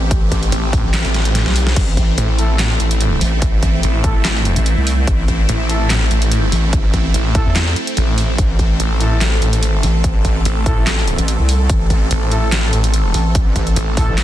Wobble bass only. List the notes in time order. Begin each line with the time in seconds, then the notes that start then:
Already playing: A1
0.84 A1
1.46 B1
1.76 A1
3.21 A1
4.56 A1
4.77 C2
5.08 A1
6.52 A1
7.46 E2
8.38 A1
9.83 A1
11.18 A1
11.39 C2
11.70 A1
13.14 A1
14.08 A1